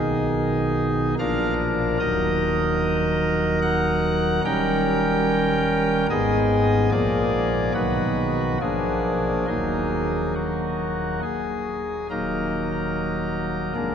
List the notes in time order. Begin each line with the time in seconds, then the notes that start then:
Already playing: B1 B2 D#3 D#4 G#4
1.19 A#1 A#2 F3 D4 A#4 F5
1.99 D#1 D#2 F#3 D#4 A#4 D#5
3.62 F#5
4.45 D#1 D#2 G3 C#4 A#4 G5
6.10 G#1 G#2 G#3 B3 G#4 D#5
6.92 A#1 A#2 F3 A#3 G#4 D5
7.74 B1 B2 D#3 F#3 F#4 B4
8.61 A#1 A#2 F3 A#3 D4 G#4
9.47 D#1 D#2 F#3 A#3 D#4 G#4
10.35 F#4
11.23 G#4
12.10 D#1 D#2 F#3 A#3 D#4 A#4
13.75 F1 F2 G#3 A#3 D4